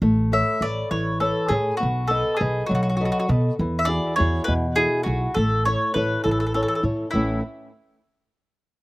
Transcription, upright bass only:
X:1
M:6/8
L:1/8
Q:3/8=68
K:A
V:1 name="Upright bass" clef=bass
A,,,2 A,,, A,,,2 A,, | B,,,2 B,,, B,,,2 B,, | E,,2 E,, E,,2 B,,, | A,,,2 A,,, A,,,2 A,, |
A,,, z4 z |]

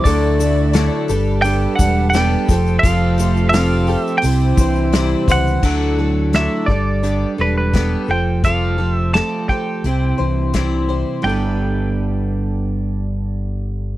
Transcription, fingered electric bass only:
X:1
M:4/4
L:1/8
Q:1/4=86
K:G
V:1 name="Fingered electric bass" clef=bass
D,,3 G,,,2 E,,,2 =F,,, | =F,,,4 C,, C,,2 ^C,, | D,,3 G,,,2 E,,,2 =F,,,- | =F,,,3 z C,, C,,3 |
G,,,8 |]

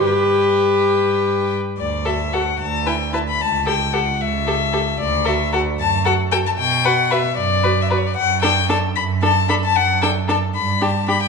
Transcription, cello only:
X:1
M:6/8
L:1/8
Q:3/8=75
K:G
V:1 name="Cello" clef=bass
G,,4- G,, z | [K:D] D,,3 D,,3 | C,,3 C,,3 | D,,3 F,,3 |
B,,3 F,,3 | [K:Dmix] F,,3 F,,3 | F,,3 G,,3 |]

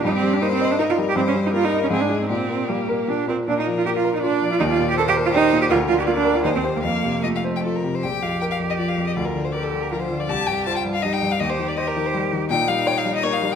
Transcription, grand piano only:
X:1
M:3/4
L:1/8
Q:1/4=160
K:Eb
V:1 name="Grand piano" clef=bass
G,, G, B, e E G, | G,, G, B, e A,, [Ee] | B,, B, G, B B,, [FB] | [K:Bb] B,, F, B, B F F, |
E,, B,, B, B G B,, | D,, D, B, B E,, [Gc] | F,, C, F, c F C, | B,,, F,, B F,, F, F,, |
D,, D, B D, F, D, | C,, G,, c G,, G, G,, | E,, E, c E, G, E, | [K:Ebmix] B,, G, d G, B, G, |]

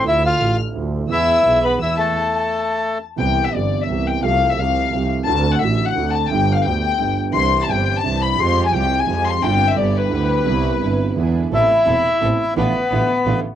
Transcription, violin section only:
X:1
M:3/4
L:1/16
Q:1/4=173
K:Ephr
V:1 name="Violin section"
e'2 f'4 z6 | e'6 b2 e'2 a2- | a8- a2 z2 | [K:C] g3 e d3 e3 g2 |
f3 e f6 z2 | a3 ^f e3 f3 a2 | g3 f g6 z2 | c'3 a g3 a3 b2 |
c'3 _a g3 a3 c'2 | g3 e d2 B6- | B8- B2 z2 | [K:Am] E12 |
B,8- B,2 z2 |]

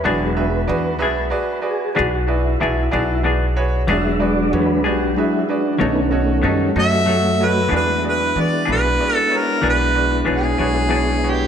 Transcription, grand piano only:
X:1
M:12/8
L:1/8
Q:3/8=63
K:Emix
V:1 name="Grand piano"
[FGBd] [FGBe] [FGBd] [FGBe] [FGBd] [FGBd] [FGBd] [FGBd] [FGBe] [FGBd] [FGBd] [FGBc] | [FGBd] [FGBd] [FGBc] [FGBd] [FGBe] [FGBd] [FAc^d] [FAcd] [FAcd] [FAcd] [FAcf] [FAcd] | [FGBd] [FGBd] [FGBd] [FGBd] [FGBd] [FGBc] [FGBd] [FGBd] [FGBc] [FGBc] [FGBc] [FGBc] |]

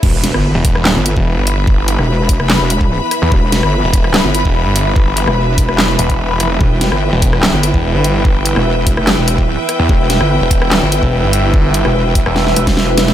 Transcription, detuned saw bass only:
X:1
M:4/4
L:1/16
Q:1/4=146
K:Em
V:1 name="Detuned saw bass" clef=bass
z4 z E,,,4 z2 E,,,2 G,,,3- | G,,,3 z12 E,, | z4 z E,,,4 z2 E,,,2 G,,,3- | G,,,3 z6 z E,,,4 =F,,,2 |
z4 z E,,,4 z2 E,,,2 G,,,3- | G,,,3 z12 E,, | z4 z E,,,4 z2 E,,,2 G,,,3- | G,,,3 z4 E,,,3 z6 |]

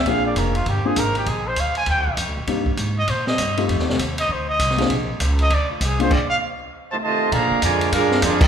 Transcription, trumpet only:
X:1
M:4/4
L:1/8
Q:"Swing" 1/4=198
K:Bbmix
V:1 name="Trumpet"
f d B F G A B G | A c f a g2 z2 | z3 e c e3 | z3 e c e3 |
z3 e d F A c | d f z6 | [K:Bb] z8 |]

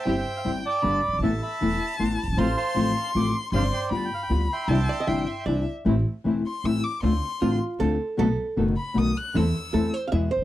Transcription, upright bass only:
X:1
M:3/4
L:1/16
Q:1/4=155
K:C
V:1 name="Upright bass" clef=bass
G,,,3/2 z2 z/2 G,,,3/2 z2 z/2 G,,,3/2 z ^F,,,/2 G,,,/2 _A,,,/2 | A,,,3/2 z2 z/2 E,,,3/2 z2 z/2 A,,,3/2 z ^F,,,/2 G,,,/2 _A,,,/2 | A,,,3/2 z2 z/2 A,,,3/2 z2 z/2 A,,,3/2 z2 z/2 | G,,,3/2 z2 z/2 G,,,3/2 z2 z/2 D,,3/2 z2 z/2 |
C,,3/2 z2 z/2 G,,,3/2 z2 z/2 C,,3/2 z2 z/2 | [K:Am] A,,,3/2 z2 z/2 E,,,3/2 z2 z/2 A,,,3/2 z2 z/2 | D,,3/2 z2 z/2 A,,,3/2 z2 z/2 D,,3/2 z2 z/2 | B,,,3/2 z2 z/2 ^F,,,3/2 z2 z/2 B,,,3/2 z2 z/2 |
E,,3/2 z2 z/2 E,,3/2 z2 z/2 E,,3/2 z ^F,,,/2 z |]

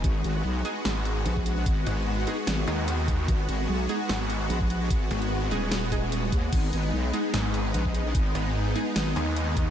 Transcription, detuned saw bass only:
X:1
M:4/4
L:1/8
Q:"Swing 16ths" 1/4=148
K:G#m
V:1 name="Detuned saw bass" clef=bass
z4 G,,,2 z2 | z G,,,2 z2 D,,3 | z4 G,,,2 z2 | z G,,,2 z4 z |
z4 G,,,2 z2 | z G,,,2 z2 D,,3 |]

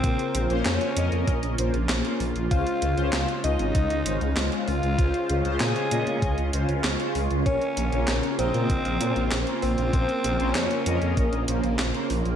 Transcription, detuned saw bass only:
X:1
M:4/4
L:1/16
Q:1/4=97
K:Bbm
V:1 name="Detuned saw bass" clef=bass
B,,, z B,,, B,,, F,, z F,, F,, B,,, B,,, B,,, B,,, B,,, z B,,, B,,, | D,, z D,, D,, D,, z D,, A,,, D,, D,, A,,, D,, D,, z D,, D,, | D,, z D,, D,, B,, z B,, B,, D,, D,, D,, D,, D,, z D,, D,, | B,,, z B,,, B,,, B,,, z B,,, B,, B,,, B,,, B,, B,,, B,,, z B,,, B,,, |
B,,, z B,,, B,,, F,, z F,, F,, B,,, B,,, B,,, B,,, B,,, z B,,, B,,, |]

